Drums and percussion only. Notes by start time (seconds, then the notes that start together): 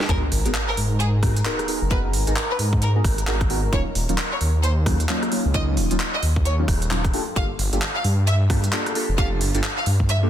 0.00 snare
0.09 kick, closed hi-hat
0.32 open hi-hat
0.46 closed hi-hat
0.54 clap
0.77 open hi-hat
1.00 closed hi-hat
1.23 kick, cross-stick, open hi-hat
1.36 closed hi-hat
1.45 clap
1.59 cross-stick, closed hi-hat
1.68 open hi-hat
1.91 kick, closed hi-hat
2.13 open hi-hat
2.27 closed hi-hat
2.36 clap
2.59 open hi-hat
2.73 kick
2.82 closed hi-hat
3.04 kick, cross-stick, open hi-hat
3.18 closed hi-hat
3.27 clap
3.41 kick, cross-stick, closed hi-hat
3.50 open hi-hat
3.73 kick, closed hi-hat
3.95 open hi-hat
4.09 closed hi-hat
4.18 clap
4.41 open hi-hat
4.63 closed hi-hat
4.86 kick, cross-stick, open hi-hat
5.00 closed hi-hat
5.09 clap
5.23 cross-stick, closed hi-hat
5.32 open hi-hat
5.54 kick, closed hi-hat
5.77 open hi-hat
5.91 closed hi-hat
6.00 clap
6.23 open hi-hat
6.36 kick
6.45 closed hi-hat
6.68 kick, cross-stick, open hi-hat
6.82 closed hi-hat
6.91 clap
7.05 kick, cross-stick, closed hi-hat
7.14 open hi-hat
7.36 kick, closed hi-hat
7.59 open hi-hat
7.73 closed hi-hat
7.82 clap
8.04 open hi-hat
8.27 closed hi-hat
8.50 kick, cross-stick, open hi-hat
8.64 closed hi-hat
8.73 clap
8.86 cross-stick, closed hi-hat
8.95 open hi-hat
9.18 kick, closed hi-hat
9.41 open hi-hat
9.55 closed hi-hat
9.64 clap
9.86 open hi-hat
10.00 kick
10.09 closed hi-hat